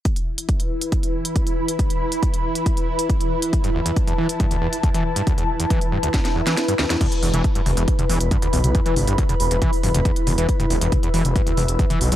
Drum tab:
CC |----------------|----------------|----------------|----------------|
HH |xx-xxx-xxx-xxx-x|xx-xxx-xxx-xxx-x|xx-xxx-xxx-xxx-x|xx-xxx-xxx-xxx-x|
SD |----------------|----------------|----------------|--------oo-oo-oo|
T2 |----------------|----------------|----------------|----------------|
BD |o---o---o---o---|o---o---o---o---|o---o---o---o---|o---o---o-------|

CC |x---------------|----------------|----------------|
HH |xxoxxxoxxxoxxxox|xxoxxxoxxooxxxox|xxoxxxoxxxoxxxox|
SD |----------------|----------------|----------------|
T2 |o--o--o--o--o--o|--o--o--o--o--o-|-o--o--o--o--o--|
BD |o---o---o---o---|o---o---o---o---|o---o---o---o---|